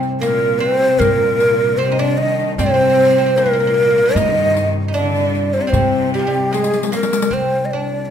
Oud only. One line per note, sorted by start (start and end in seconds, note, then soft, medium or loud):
0.21 0.62 A#3 medium
0.60 1.01 C4 medium
0.99 1.81 A#3 medium
1.78 1.91 C4 medium
1.92 1.99 D#4 medium
1.99 2.59 D4 medium
2.59 2.65 C4 medium
2.66 2.73 C4 soft
2.74 2.80 C4 medium
2.81 2.88 C4 soft
2.89 2.94 C4 soft
2.95 3.03 C4 soft
3.05 3.09 C4 soft
3.11 3.17 C4 soft
3.18 3.25 C4 medium
3.26 3.34 C4 medium
3.38 3.44 A#3 medium
3.46 3.52 A#3 medium
3.53 3.59 A#3 medium
3.60 3.66 A#3 soft
3.67 3.73 A#3 medium
3.74 3.81 A#3 soft
3.82 3.89 A#3 medium
3.91 3.97 A#3 soft
3.98 4.04 A#3 medium
4.05 4.13 A#3 soft
4.05 4.16 D4 medium
4.16 4.64 D#4 medium
4.88 4.94 D#4 medium
4.94 5.67 D4 medium
5.67 6.88 C4 medium
6.14 6.21 G3 medium
6.19 6.27 F3 medium
6.27 6.52 G3 medium
6.53 6.92 G#3 medium
6.92 7.33 A#3 medium
7.31 7.72 C4 medium
7.73 8.09 D4 medium